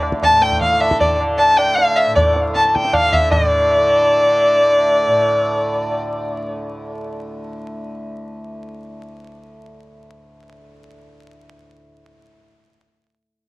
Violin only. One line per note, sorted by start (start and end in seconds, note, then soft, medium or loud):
0.24 0.44 A5 loud
0.42 0.61 G5 loud
0.61 0.82 F5 loud
0.80 0.99 E5 medium
1.00 1.18 D5 medium
1.39 1.59 A5 loud
1.57 1.78 G5 loud
1.76 1.98 F5 loud
1.97 2.15 E5 medium
2.15 2.34 D5 medium
2.55 2.69 A5 loud
2.69 2.76 A5 medium
2.75 2.89 G5 medium
2.89 2.96 G5 medium
2.94 3.15 F5 loud
3.13 3.31 E5 loud
3.32 5.99 D5 medium